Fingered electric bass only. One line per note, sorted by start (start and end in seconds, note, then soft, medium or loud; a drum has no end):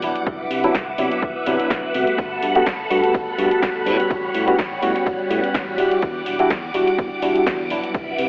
0.02 0.12 E1 medium
0.27 0.45 C2 loud
0.50 0.69 C3 medium
0.74 0.93 C2 medium
0.98 1.08 C3 medium
1.22 1.32 C2 medium
1.47 1.56 C3 loud
1.60 muted fingered electric bass stroke soft
1.70 1.80 C2 loud
1.95 2.04 C3 medium
2.18 2.37 G1 loud
2.43 2.61 G2 medium
2.66 2.85 G1 medium
2.91 3.00 G2 medium
3.14 3.24 G1 medium
3.38 3.48 G2 medium
3.51 muted fingered electric bass stroke soft
3.62 3.88 G1 medium
3.86 3.96 A2 medium
4.10 4.29 A1 loud
4.34 4.53 A2 medium
4.59 4.77 A1 medium
4.82 4.92 A2 medium
5.07 5.16 A1 medium
5.30 5.40 A2 medium
5.43 muted fingered electric bass stroke soft
5.54 5.80 A1 medium
5.78 5.88 E1 medium
6.02 6.21 E2 loud
6.26 6.45 E1 medium
6.50 6.69 E2 medium
6.74 6.84 E1 medium
6.98 7.08 E2 medium
7.22 7.32 E1 medium
7.35 muted fingered electric bass stroke soft
7.47 7.72 E2 medium
7.71 7.80 E1 medium
7.95 8.13 C2 loud
8.19 8.29 C3 medium